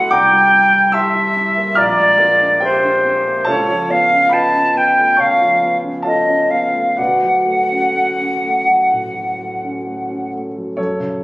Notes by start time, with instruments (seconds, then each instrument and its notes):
Already playing: grand piano D2 F#3 A3 C4 E4 F#4 D5 E5 F#5 G#5 A5 B5 C6 D6 E6 F#6, flute F#5
0.11 grand piano C2 D5 G5 A#5 D6, flute G5
0.32 grand piano G3
0.53 grand piano C4
0.73 grand piano E4
0.92 grand piano G4 E5 A5 C6 E6, flute E5
1.15 grand piano E4
1.36 grand piano C4
1.57 grand piano A#3
1.75 grand piano A#1 F5 A#5 D6 F6, flute D5
1.98 grand piano G#3
2.17 grand piano C4 F4 A#4 D5 F5
2.40 grand piano D4
2.60 grand piano C4 G4 C5 E5 G5
2.64 flute C5
2.83 grand piano D4
3.05 grand piano C4
3.26 grand piano A#3
3.45 grand piano C#2 A4 C#5 F5 A5, flute C#5
3.68 grand piano F3
3.89 grand piano B3, flute F5
4.11 grand piano C#4
4.29 grand piano F4 B4 D#5 G5 B5, flute A5
4.54 grand piano C#4
4.75 grand piano B3, flute G5
4.97 grand piano A3
5.17 grand piano C#3 C#5 F5 A5 C#6, flute F5
5.41 grand piano F3
5.62 grand piano B3
5.83 grand piano C#4
6.02 grand piano F4 A4 C#5 F5 A5
6.07 flute D#5
6.28 grand piano C#4
6.50 grand piano B3, flute F5
6.74 grand piano A3
6.97 grand piano D2 F#4 B4 D5 F#5, flute F#5
7.22 grand piano F#3
7.46 grand piano A3
7.71 grand piano C#4
7.95 grand piano A3
8.20 grand piano C#4
8.44 grand piano A3
8.68 grand piano F#3
8.91 grand piano A2
9.15 grand piano F#3
9.39 grand piano A3
9.63 grand piano C#4
9.86 grand piano A3
10.09 grand piano C#4
10.32 grand piano A3
10.56 grand piano F#3
10.77 grand piano F#2 A4 C#5
10.99 grand piano C#3